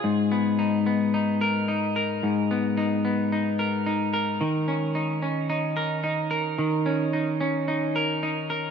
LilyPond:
\new Staff \with { instrumentName = "Clean electric guitar" } { \time 4/4 \key gis \minor \tempo 4 = 110 gis,8 b8 dis'8 b8 dis'8 ais'8 dis'8 ais'8 | gis,8 b8 dis'8 b8 dis'8 ais'8 dis'8 ais'8 | dis8 cis'8 dis'8 cis'8 dis'8 ais'8 dis'8 ais'8 | dis8 cis'8 dis'8 cis'8 dis'8 ais'8 dis'8 ais'8 | }